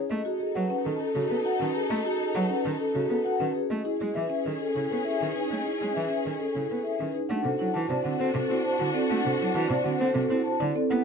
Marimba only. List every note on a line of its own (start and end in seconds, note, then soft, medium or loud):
0.25 0.44 F#4 medium
0.40 0.59 G#4 medium
0.55 0.74 B4 medium
0.70 0.89 C#4 medium
0.85 1.04 A4 medium
1.00 1.19 C#4 medium
1.15 1.34 F#4 medium
1.30 1.49 B4 medium
1.45 1.64 F#4 medium
1.60 1.79 C#4 medium
2.05 2.24 F#4 medium
2.20 2.39 G#4 medium
2.35 2.54 B4 medium
2.50 2.69 C#4 loud
2.65 2.85 A4 medium
2.80 2.99 C#4 medium
2.95 3.14 F#4 medium
3.10 3.29 B4 medium
3.26 3.45 F#4 medium
3.40 3.59 C#4 medium
3.85 4.04 E4 medium
4.00 4.19 G#4 medium
4.15 4.34 B4 medium
4.30 4.49 C#4 medium
4.45 4.64 A4 medium
4.60 4.79 C#4 medium
4.76 4.95 E4 medium
4.90 5.10 B4 medium
5.05 5.25 E4 medium
5.21 5.40 C#4 medium
5.36 5.55 D#4 medium
5.66 5.85 E4 medium
5.80 5.99 G#4 medium
5.95 6.15 B4 medium
6.10 6.30 C#4 medium
6.25 6.45 A4 soft
6.40 6.59 C#4 medium
6.55 6.75 E4 medium
6.70 6.89 B4 medium
6.84 7.04 E4 medium
6.99 7.19 C#4 medium
7.15 7.34 D#4 medium
7.29 7.49 D4 medium
7.45 7.64 C5 medium
7.59 7.79 E4 medium
7.74 7.94 F#4 medium
7.89 8.09 C5 medium
8.04 8.24 C4 medium
8.19 8.39 A4 medium
8.34 8.54 C4 medium
8.49 8.69 E4 medium
8.65 8.84 C5 medium
8.80 8.99 E4 medium
8.95 9.14 C4 medium
9.10 9.29 D4 medium
9.25 9.44 C5 medium
9.40 9.59 E4 medium
9.55 9.74 F#4 medium
9.70 9.89 C5 medium
9.85 10.04 C4 medium
10.00 10.20 A4 medium
10.15 10.34 C4 medium
10.30 10.50 E4 loud
10.46 10.65 C5 medium
10.60 10.80 E4 medium
10.76 10.95 C4 loud
10.91 11.04 E4 medium